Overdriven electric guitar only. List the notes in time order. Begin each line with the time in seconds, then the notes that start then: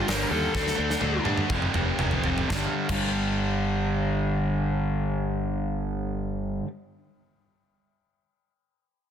0.06 G2 D3 G3
0.31 G2 D3 G3
0.54 D3 A3 D4
0.76 D3 A3 D4
1.01 D3 A3 D4
1.25 D3 A3 D4
1.50 F2 C3 F3
1.74 F2 C3 F3
1.98 F2 C3 F3
2.24 F2 C3 F3
2.48 G2 D3
2.52 G3
2.89 G2 D3
2.93 G3